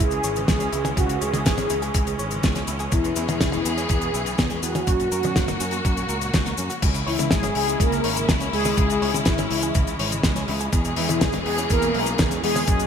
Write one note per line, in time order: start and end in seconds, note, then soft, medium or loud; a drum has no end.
0.00 0.19 C#2 medium
0.00 2.88 E3 medium
0.00 4.83 G#3 medium
0.00 6.79 C#4 medium
0.00 0.47 G#4 loud
0.00 closed hi-hat medium
0.11 0.22 C#3 medium
0.11 closed hi-hat medium
0.11 cabasa soft
0.24 0.43 G#1 medium
0.24 0.31 C#5 medium
0.24 cabasa medium
0.36 0.47 C#3 medium
0.36 closed hi-hat medium
0.36 cabasa soft
0.48 0.68 C#2 medium
0.48 0.59 E3 medium
0.48 0.99 G#4 loud
0.48 kick loud
0.48 snare medium
0.48 closed hi-hat medium
0.48 cabasa medium
0.60 0.67 C#4 loud
0.60 closed hi-hat medium
0.60 cabasa soft
0.73 0.92 C#2 medium
0.73 0.77 E4 medium
0.73 closed hi-hat medium
0.73 cabasa medium
0.85 0.89 G#4 loud
0.85 closed hi-hat medium
0.85 high tom medium
0.85 cabasa soft
0.97 1.17 C#2 medium
0.97 1.04 C#3 medium
0.97 1.20 F#4 loud
0.97 kick loud
0.97 closed hi-hat medium
0.97 cabasa medium
1.09 1.20 C#3 medium
1.09 closed hi-hat medium
1.09 cabasa soft
1.21 1.31 C#2 medium
1.21 1.45 G#4 loud
1.21 1.28 C#5 medium
1.21 closed hi-hat medium
1.21 cabasa medium
1.34 1.44 C#2 medium
1.34 1.44 C#3 medium
1.34 closed hi-hat medium
1.34 high tom medium
1.34 cabasa medium
1.46 1.65 G#1 loud
1.46 1.56 E3 medium
1.46 2.64 G#4 loud
1.46 kick loud
1.46 snare loud
1.46 closed hi-hat loud
1.46 cabasa medium
1.58 1.65 C#4 loud
1.58 closed hi-hat medium
1.58 high tom medium
1.58 cabasa soft
1.70 1.90 C#2 medium
1.70 1.74 E4 medium
1.70 closed hi-hat medium
1.70 cabasa medium
1.82 1.87 G#4 loud
1.82 closed hi-hat medium
1.82 cabasa soft
1.94 2.14 C#2 medium
1.94 2.02 C#3 medium
1.94 kick loud
1.94 closed hi-hat loud
1.94 cabasa medium
2.07 2.17 C#3 medium
2.07 closed hi-hat medium
2.07 cabasa soft
2.19 2.39 G#1 medium
2.19 2.26 C#5 medium
2.19 cabasa medium
2.31 2.42 C#3 medium
2.31 closed hi-hat medium
2.31 cabasa soft
2.43 2.63 C#2 medium
2.43 2.54 E3 loud
2.43 kick loud
2.43 snare loud
2.43 closed hi-hat medium
2.43 cabasa medium
2.55 2.63 C#4 loud
2.55 snare soft
2.55 closed hi-hat medium
2.55 cabasa soft
2.67 2.87 C#2 medium
2.67 2.72 E4 medium
2.67 closed hi-hat medium
2.67 cabasa medium
2.79 2.84 G#4 loud
2.79 closed hi-hat soft
2.79 cabasa soft
2.92 3.12 E2 medium
2.92 2.99 B2 medium
2.92 4.85 E3 medium
2.92 4.85 B3 medium
2.92 3.40 E4 medium
2.92 4.85 G#4 medium
2.92 kick loud
2.92 closed hi-hat medium
2.92 cabasa medium
3.04 3.15 B2 medium
3.04 closed hi-hat soft
3.04 cabasa soft
3.16 3.26 E2 loud
3.16 3.24 E4 medium
3.16 closed hi-hat medium
3.16 cabasa medium
3.29 3.38 E2 medium
3.29 3.39 B2 medium
3.29 closed hi-hat medium
3.29 high tom medium
3.29 cabasa soft
3.41 3.60 E1 loud
3.41 3.51 C#3 medium
3.41 3.91 E4 medium
3.41 kick loud
3.41 snare loud
3.41 closed hi-hat medium
3.41 cabasa medium
3.52 3.60 G#3 loud
3.52 closed hi-hat medium
3.52 high tom medium
3.52 cabasa soft
3.65 3.85 E2 medium
3.65 3.70 B3 medium
3.65 closed hi-hat medium
3.65 cabasa medium
3.77 3.82 C#4 loud
3.77 closed hi-hat medium
3.77 cabasa medium
3.89 4.09 E2 medium
3.89 3.97 B2 medium
3.89 4.35 G#4 loud
3.89 kick loud
3.89 closed hi-hat medium
3.89 cabasa medium
4.02 4.12 B2 medium
4.02 closed hi-hat medium
4.02 cabasa soft
4.14 4.34 B1 medium
4.14 4.21 E4 medium
4.14 cabasa medium
4.26 4.37 B2 medium
4.26 closed hi-hat medium
4.26 cabasa medium
4.38 4.58 E2 medium
4.38 4.49 C#3 loud
4.38 kick loud
4.38 snare loud
4.38 closed hi-hat medium
4.38 cabasa medium
4.50 4.58 G#3 loud
4.50 closed hi-hat medium
4.50 cabasa soft
4.63 4.82 E2 loud
4.63 4.67 B3 medium
4.63 6.30 F#4 loud
4.63 closed hi-hat medium
4.63 cabasa medium
4.75 4.79 C#4 loud
4.75 closed hi-hat medium
4.75 high tom medium
4.75 cabasa medium
4.87 5.07 F#2 medium
4.87 4.94 A#2 medium
4.87 6.81 A#3 medium
4.87 6.81 F#4 medium
4.87 kick loud
4.87 closed hi-hat loud
4.87 cabasa soft
4.99 5.10 A#2 medium
4.99 closed hi-hat medium
4.99 cabasa soft
5.12 5.21 F#2 medium
5.12 5.19 A#4 medium
5.12 closed hi-hat medium
5.12 cabasa medium
5.23 5.34 F#2 medium
5.23 5.34 A#2 medium
5.23 closed hi-hat medium
5.23 high tom medium
5.23 cabasa soft
5.36 5.55 F#1 loud
5.36 5.46 C#3 loud
5.36 kick loud
5.36 snare loud
5.36 closed hi-hat loud
5.36 cabasa medium
5.48 5.55 A#3 loud
5.48 closed hi-hat medium
5.48 high tom medium
5.48 cabasa soft
5.60 5.80 F#2 medium
5.60 5.65 C#4 medium
5.60 closed hi-hat medium
5.60 cabasa medium
5.71 5.77 F#4 loud
5.71 closed hi-hat medium
5.71 cabasa soft
5.85 6.04 F#2 medium
5.85 5.92 A#2 medium
5.85 kick loud
5.85 closed hi-hat medium
5.85 cabasa soft
5.97 6.07 A#2 medium
5.97 closed hi-hat medium
5.97 cabasa soft
6.09 6.29 C#2 medium
6.09 6.16 A#4 medium
6.09 closed hi-hat medium
6.09 cabasa medium
6.21 6.32 A#2 medium
6.21 closed hi-hat medium
6.21 cabasa soft
6.33 6.53 C#2 medium
6.33 6.44 C#3 loud
6.33 kick loud
6.33 snare loud
6.33 closed hi-hat medium
6.33 cabasa medium
6.45 6.53 A#3 loud
6.45 snare soft
6.45 closed hi-hat medium
6.45 cabasa soft
6.57 6.68 F#2 medium
6.57 6.62 C#4 medium
6.57 closed hi-hat medium
6.57 cabasa medium
6.70 6.74 F#4 loud
6.70 closed hi-hat medium
6.70 cabasa medium
6.82 7.02 C#2 loud
6.82 6.89 C#3 medium
6.82 12.64 G#3 medium
6.82 10.69 C#4 medium
6.82 10.69 E4 medium
6.82 kick loud
6.82 closed hi-hat medium
6.82 crash loud
6.82 cabasa medium
6.94 7.05 C#3 medium
6.94 closed hi-hat medium
6.94 cabasa soft
7.07 7.17 C#2 medium
7.07 7.30 E3 medium
7.07 7.32 E4 medium
7.07 7.14 C#5 medium
7.07 open hi-hat loud
7.19 7.29 C#2 medium
7.19 7.29 C#3 medium
7.19 closed hi-hat medium
7.19 high tom medium
7.19 cabasa medium
7.31 7.51 G#1 loud
7.31 7.42 E3 loud
7.31 7.54 G#3 medium
7.31 7.54 G#4 loud
7.31 kick loud
7.31 snare loud
7.31 closed hi-hat loud
7.31 cabasa medium
7.43 7.50 C#4 loud
7.43 closed hi-hat medium
7.43 high tom medium
7.43 cabasa soft
7.55 7.75 C#2 medium
7.55 7.79 G#3 medium
7.55 7.60 E4 medium
7.55 7.81 G#4 loud
7.55 open hi-hat loud
7.67 7.72 G#4 loud
7.67 closed hi-hat medium
7.67 cabasa medium
7.80 7.99 C#2 medium
7.80 7.87 C#3 medium
7.80 8.26 A#3 medium
7.80 8.26 A#4 loud
7.80 kick loud
7.80 closed hi-hat loud
7.80 cabasa medium
7.92 8.02 C#3 medium
7.92 closed hi-hat medium
7.92 cabasa soft
8.04 8.24 G#1 medium
8.04 8.11 C#5 medium
8.04 open hi-hat loud
8.16 8.27 C#3 medium
8.16 closed hi-hat medium
8.16 cabasa medium
8.28 8.48 C#2 loud
8.28 8.39 E3 loud
8.28 kick loud
8.28 snare loud
8.28 closed hi-hat medium
8.28 cabasa medium
8.40 8.48 C#4 loud
8.40 closed hi-hat medium
8.40 cabasa soft
8.53 8.73 C#2 loud
8.53 8.76 G#3 medium
8.53 8.57 E4 medium
8.53 8.76 G#4 loud
8.53 open hi-hat loud
8.65 8.69 G#4 loud
8.65 open hi-hat medium
8.65 high tom medium
8.65 cabasa medium
8.77 8.97 C#2 loud
8.77 8.85 C#3 medium
8.77 9.23 G#3 medium
8.77 9.28 G#4 loud
8.77 kick loud
8.77 closed hi-hat loud
8.77 cabasa medium
8.90 9.00 C#3 medium
8.90 closed hi-hat medium
8.90 cabasa medium
9.02 9.12 C#2 loud
9.02 9.09 C#5 medium
9.02 open hi-hat loud
9.14 9.24 C#2 medium
9.14 9.25 C#3 medium
9.14 closed hi-hat medium
9.14 high tom medium
9.14 cabasa medium
9.25 9.46 G#1 loud
9.25 9.37 E3 loud
9.25 10.20 E3 medium
9.25 10.20 E4 medium
9.25 kick loud
9.25 snare loud
9.25 closed hi-hat loud
9.25 cabasa medium
9.38 9.46 C#4 loud
9.38 closed hi-hat medium
9.38 high tom medium
9.38 cabasa medium
9.51 9.70 C#2 medium
9.51 9.55 E4 medium
9.51 open hi-hat loud
9.62 9.67 G#4 loud
9.62 closed hi-hat medium
9.62 cabasa medium
9.75 9.95 C#2 medium
9.75 9.82 C#3 medium
9.75 kick loud
9.75 closed hi-hat medium
9.75 cabasa medium
9.87 9.98 C#3 medium
9.87 closed hi-hat medium
9.87 cabasa soft
9.99 10.19 G#1 medium
9.99 10.07 C#5 medium
9.99 open hi-hat loud
10.12 10.22 C#3 medium
10.12 closed hi-hat medium
10.12 cabasa medium
10.23 10.43 C#2 medium
10.23 10.34 E3 loud
10.23 kick loud
10.23 snare loud
10.23 closed hi-hat medium
10.23 cabasa medium
10.36 10.43 C#4 loud
10.36 snare soft
10.36 closed hi-hat medium
10.36 cabasa medium
10.48 10.68 C#2 loud
10.48 10.53 E4 medium
10.48 open hi-hat loud
10.60 10.65 G#4 loud
10.60 closed hi-hat medium
10.60 cabasa medium
10.73 10.92 E2 medium
10.73 10.80 B2 medium
10.73 12.66 B2 medium
10.73 12.66 E3 medium
10.73 12.87 C#4 medium
10.73 12.66 G#4 medium
10.73 kick loud
10.73 closed hi-hat medium
10.73 cabasa medium
10.85 10.95 B2 medium
10.85 closed hi-hat medium
10.85 cabasa soft
10.96 11.07 E2 medium
10.96 11.20 E3 medium
10.96 11.22 E4 medium
10.96 11.04 E4 medium
10.96 open hi-hat loud
11.09 11.19 E2 loud
11.09 11.20 B2 medium
11.09 closed hi-hat medium
11.09 high tom medium
11.09 cabasa medium
11.21 11.41 E1 loud
11.21 11.32 C#3 loud
11.21 11.33 G#3 medium
11.21 11.32 G#4 loud
11.21 kick loud
11.21 snare loud
11.21 closed hi-hat loud
11.21 cabasa medium
11.32 11.41 G#3 loud
11.32 closed hi-hat medium
11.32 high tom medium
11.32 cabasa soft
11.46 11.65 E2 medium
11.46 11.57 G#3 medium
11.46 11.50 B3 medium
11.46 11.57 G#4 loud
11.46 open hi-hat loud
11.58 11.62 C#4 loud
11.58 closed hi-hat medium
11.58 cabasa medium
11.70 11.90 E2 medium
11.70 11.77 B2 medium
11.70 12.16 A#3 medium
11.70 12.16 A#4 loud
11.70 kick loud
11.70 closed hi-hat loud
11.70 cabasa medium
11.82 11.93 B2 medium
11.82 closed hi-hat medium
11.82 cabasa medium
11.94 12.14 B1 medium
11.94 12.02 E4 medium
11.94 open hi-hat loud
12.06 12.17 B2 medium
12.06 closed hi-hat medium
12.06 cabasa medium
12.18 12.38 E2 medium
12.18 12.30 C#3 loud
12.18 kick loud
12.18 snare loud
12.18 closed hi-hat medium
12.18 cabasa medium
12.31 12.38 G#3 loud
12.31 closed hi-hat medium
12.31 cabasa soft
12.43 12.63 E2 loud
12.43 12.66 G#3 medium
12.43 12.48 B3 medium
12.43 12.67 G#4 loud
12.43 open hi-hat loud
12.54 12.60 C#4 loud
12.54 open hi-hat medium
12.54 high tom medium
12.54 cabasa medium
12.67 12.87 F#2 loud
12.67 12.75 A#2 medium
12.67 12.87 F#3 medium
12.67 12.87 G#3 medium
12.67 12.87 A#3 medium
12.67 12.87 G#4 loud
12.67 kick loud
12.67 closed hi-hat loud
12.67 cabasa medium
12.80 12.87 A#2 medium
12.80 closed hi-hat medium
12.80 cabasa soft